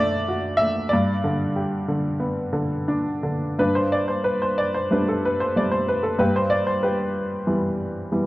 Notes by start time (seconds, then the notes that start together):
Already playing: D3 A3 D4 A4 C5 D5 E5
0.28 F#4
0.57 A3 E5
0.89 D5
0.93 G2
1.24 D3
1.56 G4
1.88 D3
2.20 B3
2.53 D3
2.88 D4
3.23 D3
3.59 G2 D4 B4
3.75 C5
3.92 D5
4.08 C5
4.24 B4
4.42 C5
4.58 D5
4.74 C5
4.91 G3 A3 B3 D4 B4
5.08 A4
5.25 B4
5.40 C5
5.56 G3 A3 B3 D5
5.72 C5
5.88 B4
6.03 A4
6.19 G2 G4 B4
6.36 C5
6.50 D5
6.67 C5
6.83 G4 B4
7.47 E3 G3 B3
8.12 E3 G3 B3